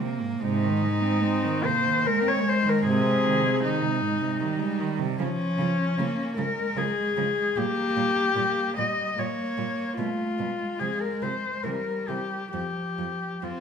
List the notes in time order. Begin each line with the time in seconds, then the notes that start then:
0.00 C3 A#3
0.21 G#2
0.41 G#2 C3 G#3 D#4
0.64 D#3
0.83 G#3
1.02 C4
1.22 G#3 C4
1.44 D#3
1.63 C3 A#3 C5
1.85 D#3
2.05 G#3 A#4
2.22 C4
2.28 C#5
2.43 G#3
2.49 C5
2.63 D#3
2.69 A#4
2.83 G#2 C3 G#4
3.02 C3
3.23 D#3
3.44 G#3
3.63 D#3 G#3 D#4
3.82 C3
4.01 G#2
4.21 C3
4.41 D#3 G3
4.59 G#3
4.80 D#3
4.99 C3
5.19 C#3 F3 C#4
5.58 C#3 F3
5.98 C#3 F3 A#3
6.37 C#3 F3 G#3 A#4
6.77 C#3 F3 G#4
7.17 C#3 F3
7.56 A#2 G3 A#3 G4
7.97 A#2 G3
8.36 A#2 G3 A#3
8.77 A#2 G3 D#5
9.18 A#2 G3 A#3 C#5
9.57 A#2 G3
9.97 B2 G3 A3 F4
10.37 B2 G3 G#3
10.79 C3 F3 G#4
11.01 A#4
11.22 C3 F3 C5
11.64 C3 E3 G3 A#4
12.08 C3 E3 G4
12.52 F2 F3 G4
12.99 F2 F3
13.43 F2 F3 C4 F4